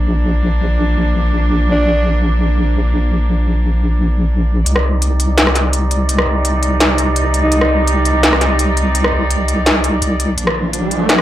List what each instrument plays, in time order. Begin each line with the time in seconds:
Already playing: wobble bass A#1, cello section F3 A#3 D4
1.72 alto saxophone D4
4.66 wobble bass C2, cello section C3 G3 D#4 D5, closed hi-hat
4.76 cross-stick
5.02 closed hi-hat
5.20 closed hi-hat
5.38 snare, closed hi-hat
5.47 cross-stick
5.55 snare, closed hi-hat
5.73 closed hi-hat
5.91 closed hi-hat
6.09 closed hi-hat
6.18 cross-stick
6.27 wobble bass C2
6.45 closed hi-hat
6.63 closed hi-hat
6.80 snare, closed hi-hat
6.98 closed hi-hat
7.16 closed hi-hat
7.34 closed hi-hat
7.43 alto saxophone D#4
7.52 wobble bass C2, closed hi-hat
7.61 cross-stick
7.88 closed hi-hat
8.05 closed hi-hat
8.23 snare, closed hi-hat
8.33 cross-stick
8.41 snare, closed hi-hat
8.59 closed hi-hat
8.77 closed hi-hat
8.95 closed hi-hat
9.04 cross-stick
9.12 wobble bass C2
9.31 closed hi-hat
9.48 closed hi-hat
9.66 snare, closed hi-hat
9.84 closed hi-hat
10.02 wobble bass C2, closed hi-hat
10.20 closed hi-hat
10.37 wobble bass A#1, cello section F3 A#3 D4, closed hi-hat, riser
10.47 cross-stick
10.73 closed hi-hat
10.91 closed hi-hat
11.09 snare, closed hi-hat
11.19 cross-stick